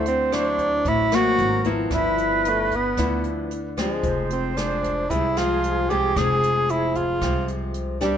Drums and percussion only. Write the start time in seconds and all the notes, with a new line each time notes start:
0.06 closed hi-hat
0.32 cross-stick, closed hi-hat
0.58 kick, closed hi-hat
0.85 kick, closed hi-hat
1.12 cross-stick, closed hi-hat
1.38 closed hi-hat
1.64 kick, closed hi-hat
1.91 kick, cross-stick, closed hi-hat
2.18 closed hi-hat
2.45 closed hi-hat
2.71 kick, closed hi-hat
2.97 kick, cross-stick, closed hi-hat
3.24 closed hi-hat
3.51 closed hi-hat
3.77 kick, cross-stick, closed hi-hat
4.03 kick, closed hi-hat
4.30 closed hi-hat
4.57 cross-stick, closed hi-hat
4.83 kick, closed hi-hat
5.10 kick, closed hi-hat
5.37 cross-stick, closed hi-hat
5.64 closed hi-hat
5.90 kick, closed hi-hat
6.16 kick, cross-stick, closed hi-hat
6.43 closed hi-hat
6.69 closed hi-hat
6.95 kick, closed hi-hat
7.21 kick, cross-stick, closed hi-hat
7.48 closed hi-hat
7.74 closed hi-hat
8.01 kick, cross-stick, closed hi-hat